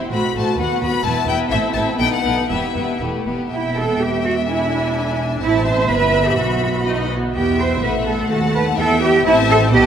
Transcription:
0.00 0.11 C4 soft
0.00 0.12 E4 soft
0.00 0.10 G4 soft
0.00 0.10 E5 soft
0.10 0.19 A1 soft
0.10 0.21 A2 soft
0.10 0.35 A3 soft
0.10 0.34 F#4 soft
0.10 0.33 C5 soft
0.10 0.35 B5 medium
0.34 0.42 A1 soft
0.34 0.45 A2 soft
0.34 0.58 A3 soft
0.34 0.57 F#4 soft
0.34 0.58 F#4 soft
0.34 0.58 C5 soft
0.34 0.59 A5 medium
0.57 0.65 D#2 soft
0.57 0.67 D#2 soft
0.57 0.81 B3 soft
0.57 0.80 F#4 soft
0.57 0.81 F#4 soft
0.57 0.80 B4 soft
0.57 0.82 F#5 medium
0.81 0.89 D#2 soft
0.81 0.90 D#2 soft
0.81 1.03 B3 soft
0.81 1.04 F#4 soft
0.81 1.05 F#4 soft
0.81 1.04 B4 soft
0.81 1.05 B5 medium
1.04 1.12 E1 soft
1.04 1.13 E2 soft
1.04 1.26 B3 soft
1.04 1.26 E4 soft
1.04 1.25 B4 soft
1.04 1.25 E5 soft
1.04 1.28 A5 medium
1.26 1.36 E1 medium
1.26 1.36 E2 medium
1.26 1.50 B3 soft
1.26 1.49 E4 soft
1.26 1.50 B4 soft
1.26 1.49 E5 soft
1.26 1.37 G5 medium
1.50 1.59 A1 medium
1.50 1.60 A2 medium
1.50 1.72 C4 medium
1.50 1.73 E4 medium
1.50 1.74 A4 medium
1.50 1.74 E5 medium
1.50 1.59 E5 medium
1.73 1.83 A1 medium
1.73 1.84 A2 medium
1.73 1.98 C4 soft
1.73 1.98 E4 soft
1.73 1.97 A4 soft
1.73 1.99 E5 soft
1.73 1.81 A5 medium
1.98 2.08 B1 medium
1.98 2.08 B2 soft
1.98 2.23 B3 soft
1.98 2.23 D#4 soft
1.98 2.22 A4 soft
1.98 2.22 B4 soft
1.98 2.11 G5 medium
2.12 2.49 F#5 medium
2.23 2.33 B1 soft
2.23 2.33 B2 soft
2.23 2.49 B3 soft
2.23 2.49 D#4 soft
2.23 2.49 A4 soft
2.23 2.49 B4 soft
2.49 2.59 E1 soft
2.49 2.59 E2 soft
2.49 2.75 B3 soft
2.49 2.75 E4 soft
2.49 2.74 G4 soft
2.49 2.74 B4 soft
2.49 3.00 E5 soft
2.75 2.85 E1 soft
2.75 2.85 E2 soft
2.75 3.01 B3 soft
2.75 3.01 E4 soft
2.75 3.00 G4 soft
2.75 3.00 B4 soft
3.01 3.09 E1 soft
3.01 3.11 E2 soft
3.01 3.26 A3 soft
3.01 3.26 G4 soft
3.01 3.25 B4 soft
3.26 3.35 E1 soft
3.26 3.36 E2 soft
3.26 3.52 B3 soft
3.26 3.51 G4 soft
3.26 3.51 B4 soft
3.50 5.38 E1 medium
3.50 4.45 B3 soft
3.50 3.75 E4 medium
3.50 5.38 E5 medium
3.50 4.43 G5 soft
3.77 4.01 A4 medium
4.01 4.25 G4 medium
4.25 4.33 F#4 medium
4.47 5.38 D4 medium
4.47 5.17 E4 medium
4.47 5.37 G#5 medium
5.40 5.88 A1 medium
5.40 5.87 C4 medium
5.40 5.64 E4 medium
5.40 6.83 E5 medium
5.40 5.85 A5 medium
5.65 5.89 C5 medium
5.89 6.37 G1 medium
5.89 6.78 B3 medium
5.89 6.25 B4 medium
5.89 7.11 B5 medium
6.26 6.38 G4 medium
6.36 7.13 B1 medium
6.36 7.09 F#4 medium
6.85 7.09 D#4 medium
6.85 7.12 D#5 medium
7.11 7.34 B3 medium
7.34 7.79 E2 medium
7.34 7.80 B3 soft
7.34 7.57 G4 medium
7.34 8.26 E5 medium
7.34 7.80 G5 medium
7.59 7.83 C5 medium
7.82 8.30 A1 medium
7.82 8.78 A3 medium
7.82 7.91 B4 medium
7.82 8.30 F#5 soft
8.07 8.30 A4 medium
8.29 8.76 D#2 medium
8.29 8.54 F#4 medium
8.29 8.78 F#5 medium
8.29 8.77 A5 medium
8.55 8.63 B4 medium
8.76 9.24 E2 medium
8.76 9.25 B3 medium
8.76 9.00 A4 loud
8.76 9.22 E5 medium
8.76 9.24 G5 medium
9.01 9.24 G4 medium
9.23 9.69 A1 medium
9.23 9.70 C4 medium
9.23 9.33 E4 loud
9.23 9.69 E5 medium
9.23 9.69 A5 medium
9.49 9.57 A4 loud
9.72 9.86 B1 medium
9.72 9.86 B3 medium
9.72 9.85 G4 loud
9.72 9.86 D#5 medium
9.72 9.86 A5 medium

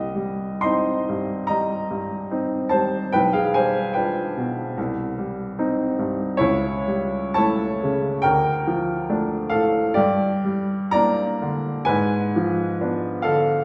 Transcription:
0.00 1.43 C2 soft
0.00 0.59 G4 soft
0.00 0.61 D#5 medium
0.15 0.91 G3 soft
0.61 1.04 C4 soft
0.61 1.05 D#4 soft
0.61 1.45 D#5 soft
0.61 1.48 C6 medium
1.09 1.74 G2 soft
1.47 2.14 G3 soft
1.47 2.67 D#5 soft
1.47 2.71 A#5 medium
1.91 2.56 G2 soft
2.31 2.68 C4 soft
2.31 2.69 D#4 soft
2.69 3.14 G3 soft
2.69 3.10 C5 soft
2.69 3.12 A5 medium
3.12 4.74 B1 soft
3.12 3.33 B4 medium
3.12 3.34 G5 medium
3.33 3.53 G#4 soft
3.33 3.54 F5 medium
3.54 4.21 G3 soft
3.54 3.93 C5 soft
3.54 3.95 G#5 medium
3.93 4.33 D4 soft
3.93 4.33 F4 soft
3.93 5.95 B4 soft
3.93 5.98 G5 soft
4.37 4.78 B2 soft
4.78 6.37 C2 soft
5.18 5.83 G3 soft
5.59 5.95 C4 soft
5.59 5.95 D#4 soft
5.99 6.41 G2 soft
6.37 8.22 C#2 soft
6.37 7.32 E4 soft
6.37 7.34 C#5 medium
6.88 7.65 G3 soft
7.34 7.79 A3 soft
7.34 7.79 E4 soft
7.34 8.21 C#5 medium
7.34 8.24 A5 medium
7.83 8.26 C#3 soft
8.22 9.93 D2 soft
8.22 9.48 A#4 medium
8.22 9.51 G5 medium
8.68 9.36 F3 soft
9.09 9.49 A3 soft
9.09 9.49 D4 soft
9.50 9.97 A2 soft
9.50 9.93 A4 medium
9.50 9.95 F5 medium
9.94 11.87 G2 soft
9.94 10.91 G4 medium
9.94 10.91 D5 medium
10.44 11.25 G3 soft
10.91 11.39 A#3 soft
10.91 11.39 D4 soft
10.91 11.85 D5 medium
10.91 11.89 A#5 medium
11.42 11.90 D3 soft
11.85 13.64 G#2 medium
11.85 13.21 B4 medium
11.85 13.25 G#5 medium
12.36 13.09 F3 soft
12.81 13.23 B3 soft
12.81 13.23 D4 soft
13.22 13.64 D3 soft
13.22 13.64 A4 soft
13.22 13.64 F5 medium

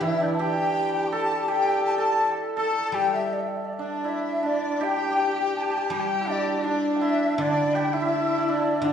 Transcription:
0.00 0.75 D3 medium
0.00 2.19 E3 medium
0.00 0.20 D4 medium
0.00 3.50 E4 medium
0.00 0.42 E4 medium
0.00 0.39 G4 medium
0.00 0.24 E5 loud
0.00 0.23 E5 medium
0.21 3.79 D4 medium
0.21 0.35 D5 medium
0.21 0.26 G6 soft
0.27 0.31 E6 soft
0.31 0.41 A5 medium
0.31 0.37 B5 medium
0.31 0.33 D6 soft
0.37 1.48 G4 medium
0.37 1.49 G4 medium
0.37 1.05 G5 loud
0.37 0.93 G5 medium
0.37 0.42 A5 medium
0.94 1.11 G5 medium
1.05 1.14 B5 medium
1.05 1.08 D6 medium
1.12 1.98 A4 medium
1.12 1.42 A5 medium
1.12 1.50 A5 loud
1.42 1.50 A5 medium
1.48 2.94 G4 medium
1.48 2.28 G4 medium
1.48 1.83 G5 medium
1.48 1.85 G5 loud
1.84 1.97 A5 medium
1.84 1.92 A5 loud
1.91 2.01 G5 medium
1.98 2.56 A4 loud
1.98 2.29 A5 medium
1.98 2.32 A5 loud
2.56 5.49 A4 medium
2.56 2.96 A4 loud
2.56 2.95 A5 loud
2.56 2.96 A5 medium
2.92 5.17 G3 medium
2.92 4.80 G4 medium
2.92 3.30 G4 medium
2.92 3.12 G5 loud
2.92 3.15 G5 medium
3.13 3.34 E5 medium
3.13 3.31 E5 medium
3.32 3.41 D5 medium
3.40 3.49 E5 medium
3.48 3.58 D5 medium
3.56 3.66 E5 medium
3.65 3.74 D5 medium
3.73 3.83 E5 medium
3.79 4.39 D4 medium
3.79 4.43 D4 medium
3.79 4.08 D5 medium
3.79 4.10 D5 medium
4.04 6.21 E4 medium
4.04 4.16 E5 medium
4.04 4.47 E5 medium
4.14 4.23 D5 medium
4.21 4.46 E5 medium
4.43 6.27 D4 medium
4.43 4.82 D4 medium
4.43 4.84 D5 medium
4.43 4.85 D5 medium
4.81 4.89 G4 medium
4.81 5.91 G4 medium
4.81 5.38 G5 medium
4.81 5.58 G5 loud
4.89 4.96 G4 medium
4.96 5.02 G4 medium
5.02 5.10 G4 medium
5.10 5.18 G4 medium
5.19 5.26 G4 medium
5.27 5.33 G4 medium
5.34 5.40 G4 medium
5.39 5.47 G4 medium
5.39 5.55 G5 medium
5.48 5.55 G4 medium
5.55 5.63 G4 medium
5.55 5.85 A5 loud
5.55 5.64 A5 medium
5.62 5.70 G4 medium
5.62 5.71 G5 medium
5.70 5.76 G4 medium
5.70 5.93 A5 medium
5.77 5.91 G4 medium
5.86 8.10 G3 medium
5.86 5.95 A5 medium
5.91 6.94 G4 medium
5.91 6.66 G4 medium
5.91 6.01 G5 loud
5.91 6.32 G5 loud
5.99 6.08 A5 medium
6.06 6.30 G5 loud
6.21 7.01 E4 medium
6.27 6.63 D4 medium
6.27 6.64 D5 medium
6.27 6.66 D5 loud
6.64 7.39 D4 medium
6.64 7.38 D4 medium
6.64 7.02 D5 medium
6.68 6.97 D5 medium
6.94 7.75 G4 medium
6.94 7.04 G5 medium
7.01 7.93 E4 medium
7.01 7.38 E5 medium
7.01 7.41 E5 loud
7.38 8.80 D3 medium
7.38 7.95 D4 medium
7.38 8.48 D4 medium
7.38 7.75 D5 medium
7.38 7.77 D5 loud
7.74 8.93 G4 medium
7.74 7.95 G5 medium
7.74 7.94 G5 loud
7.93 8.00 E4 medium
7.93 8.86 E4 medium
7.93 8.51 E5 loud
7.93 8.58 E5 medium
8.01 8.08 E4 medium
8.09 8.16 E4 medium
8.16 8.22 E4 medium
8.22 8.31 E4 medium
8.31 8.37 E4 medium
8.38 8.93 E4 medium
8.48 8.84 D4 medium
8.48 8.84 D5 medium
8.77 8.85 E5 medium
8.82 8.93 D3 medium
8.82 8.93 D4 medium
8.82 8.91 D4 medium
8.82 8.93 D5 medium
8.82 8.93 D5 loud

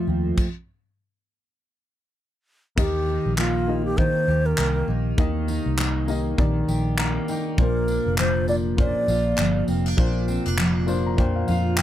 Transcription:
0.00 0.45 F2 medium
0.00 0.45 F3 medium
0.00 0.45 A3 medium
0.00 0.38 F4 medium
0.07 0.32 D#2 medium
0.07 0.45 C4 medium
0.37 kick medium
0.37 crash medium
2.76 3.17 D#2 medium
2.76 3.96 D#3 medium
2.76 3.59 A#3 medium
2.76 3.59 D#4 medium
2.76 3.60 G4 medium
2.76 3.34 G4 medium
2.76 3.60 D#5 medium
2.76 kick loud
2.76 crash medium
3.07 4.87 D#4 medium
3.26 4.12 A#1 medium
3.37 4.58 A#3 medium
3.37 3.83 F4 medium
3.37 clap loud
3.68 3.95 A#3 medium
3.68 3.95 D#4 medium
3.68 3.96 G4 medium
3.68 3.96 D#5 medium
3.85 3.99 G4 medium
3.97 5.17 D#3 medium
3.97 5.06 A#3 medium
3.97 5.07 D#4 medium
3.97 5.07 G4 medium
3.97 4.47 C5 medium
3.97 5.07 D#5 medium
3.97 kick medium
4.28 4.53 D#2 medium
4.28 6.67 G4 medium
4.46 4.88 A#4 medium
4.58 4.83 C2 medium
4.58 5.78 A#3 medium
4.58 clap loud
4.88 5.13 A#1 medium
4.88 5.47 D#4 medium
5.17 5.58 D#2 loud
5.17 6.37 D#3 medium
5.17 5.99 A#3 medium
5.17 6.00 D#4 medium
5.17 6.00 G4 medium
5.17 6.00 D#5 medium
5.17 kick loud
5.48 7.28 D#4 medium
5.48 tambourine medium
5.66 6.35 C2 medium
5.78 6.98 A#3 medium
5.78 clap loud
6.08 6.35 A#3 medium
6.08 6.36 D#4 medium
6.08 6.36 G4 medium
6.08 6.36 D#5 medium
6.08 tambourine medium
6.38 6.63 A#1 medium
6.38 7.65 D#3 medium
6.38 7.47 A#3 medium
6.38 7.47 D#4 medium
6.38 7.47 G4 medium
6.38 7.48 D5 medium
6.38 kick medium
6.68 7.17 A#1 medium
6.68 7.65 G4 medium
6.68 tambourine medium
6.98 9.71 A#3 medium
6.98 7.27 A#5 medium
6.98 clap loud
7.28 7.66 D#4 medium
7.28 7.57 G5 medium
7.28 tambourine medium
7.58 7.98 A#1 loud
7.58 8.77 A#2 medium
7.58 8.40 A#3 medium
7.58 8.40 D4 medium
7.58 8.40 F4 medium
7.58 8.15 A#4 medium
7.58 8.41 C5 medium
7.58 kick loud
7.88 9.68 D4 medium
7.88 tambourine medium
8.06 8.92 F1 medium
8.18 9.37 F3 medium
8.18 8.46 C5 medium
8.18 clap loud
8.48 8.75 A#3 medium
8.48 8.75 D4 medium
8.48 8.76 F4 medium
8.48 8.55 D5 loud
8.48 8.76 D5 medium
8.48 tambourine medium
8.77 9.97 A#2 medium
8.77 9.86 A#3 medium
8.77 8.86 C#4 medium
8.77 9.87 F4 medium
8.77 9.87 C5 medium
8.77 9.65 D5 medium
8.77 kick medium
8.84 9.90 D4 medium
9.08 9.33 A#1 medium
9.08 11.48 F4 medium
9.08 tambourine medium
9.38 9.63 G1 medium
9.38 10.56 F3 medium
9.38 clap loud
9.68 9.93 F1 medium
9.68 9.86 C4 medium
9.68 tambourine medium
9.86 10.27 D4 medium
9.97 10.37 A#1 medium
9.97 11.17 A#2 medium
9.97 10.79 A#3 medium
9.97 10.79 D4 medium
9.97 10.80 F4 medium
9.97 10.80 C5 medium
9.97 kick loud
10.28 10.46 C4 medium
10.28 tambourine medium
10.46 11.15 F1 medium
10.46 11.82 D4 medium
10.58 11.77 F3 medium
10.58 clap loud
10.86 11.14 A#3 medium
10.86 11.15 D4 medium
10.86 11.15 F4 medium
10.86 11.16 C5 medium
10.86 11.05 C6 medium
10.86 tambourine medium
11.06 11.18 A#5 medium
11.17 11.43 F2 medium
11.17 11.82 A#2 medium
11.17 11.82 A#3 medium
11.17 11.82 D4 medium
11.17 11.82 F4 medium
11.17 11.82 C5 medium
11.17 11.35 G5 medium
11.17 kick medium
11.36 11.46 F5 medium
11.48 11.82 F2 medium
11.48 11.82 F4 medium
11.48 11.76 F5 medium
11.48 tambourine medium
11.78 11.82 F3 medium
11.78 11.82 G5 medium
11.78 clap loud

